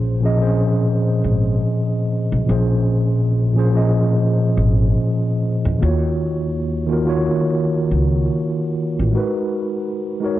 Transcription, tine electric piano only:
0.00 0.21 A#2 medium
0.00 0.22 F3 medium
0.00 0.23 C#4 medium
0.00 0.24 G#4 medium
0.00 0.43 C5 medium
0.21 0.32 A#2 medium
0.21 0.33 F3 medium
0.21 0.33 C#4 medium
0.21 0.34 G#4 medium
0.26 0.35 D#5 medium
0.37 1.47 A#2 medium
0.37 1.48 F3 medium
0.37 0.47 C4 medium
0.42 1.49 G#4 medium
0.42 1.50 C5 medium
0.46 1.51 C#4 medium
2.46 3.16 A#2 medium
2.46 3.16 F3 medium
2.46 3.17 C#4 medium
2.46 3.18 G#4 medium
2.51 3.18 C5 medium
3.54 3.65 A#2 medium
3.54 3.66 F3 medium
3.54 3.67 C#4 medium
3.58 3.68 G#4 medium
3.58 3.68 C5 medium
3.71 4.81 A#2 medium
3.71 4.81 F3 medium
3.71 4.82 C#4 medium
3.75 4.83 G#4 medium
3.75 4.83 D#5 medium
5.79 6.49 D#3 medium
5.79 6.50 A#3 medium
5.79 6.50 F4 medium
5.84 6.51 F#4 medium
5.84 6.52 C#5 medium
6.87 6.99 D#3 medium
6.87 7.00 A#3 medium
6.87 7.00 F4 medium
6.91 7.01 F#4 medium
6.91 7.01 A#4 medium
7.04 8.14 D#3 medium
7.04 8.14 A#3 medium
7.04 8.15 F4 medium
7.04 8.16 F#4 medium
7.09 8.16 C#5 medium
9.12 9.82 G#3 medium
9.12 9.83 D#4 medium
9.12 9.83 F#4 medium
9.16 9.84 A#4 medium
9.16 9.85 B4 medium
10.20 10.32 G#3 medium
10.20 10.33 D#4 medium
10.20 10.34 F#4 medium
10.20 10.34 A#4 medium
10.26 10.35 C#5 medium

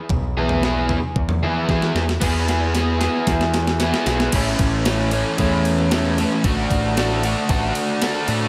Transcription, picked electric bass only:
0.10 0.96 B1 medium
1.16 1.44 E2 loud
1.42 1.64 E3 medium
1.69 1.90 E3 medium
1.95 2.17 E2 loud
2.22 3.07 E2 medium
3.27 3.91 E2 loud
4.06 4.28 B1 medium
4.33 4.54 A1 medium
4.59 5.23 A1 medium
5.39 6.24 E2 loud
6.44 6.65 A1 loud
6.70 7.34 A1 medium
7.49 7.70 A1 loud
8.28 8.48 A2 medium

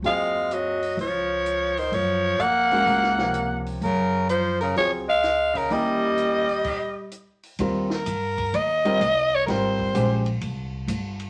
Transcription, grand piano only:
0.04 0.77 F#3 medium
0.04 0.77 C4 soft
0.04 0.77 F4 soft
0.04 0.78 G#4 medium
2.71 3.16 G#3 medium
2.71 3.16 C#4 medium
2.71 3.17 F#4 medium
2.71 3.17 A#4 medium
3.19 3.79 C3 medium
3.19 3.79 F3 soft
3.19 3.79 A#4 soft
3.19 3.80 C#5 medium
4.76 5.05 F#3 soft
4.76 5.05 C4 soft
4.76 5.06 F4 soft
4.76 5.06 G#4 medium
5.70 6.43 A#3 medium
5.70 6.43 C#4 soft
5.70 6.43 E4 soft
5.70 6.44 G4 medium
7.60 7.88 G3 medium
7.60 7.88 C4 medium
7.60 7.88 F4 medium
7.60 7.89 A#4 medium
8.85 8.99 G3 medium
8.85 8.99 C4 medium
8.85 8.99 F4 medium
8.85 9.00 A#4 medium
9.48 9.93 G3 medium
9.48 9.94 C4 soft
9.48 9.94 F4 medium
9.48 9.94 A#4 medium
9.94 10.23 G#3 medium
9.94 10.23 C#4 soft
9.94 10.23 G4 soft
9.94 10.24 C5 medium

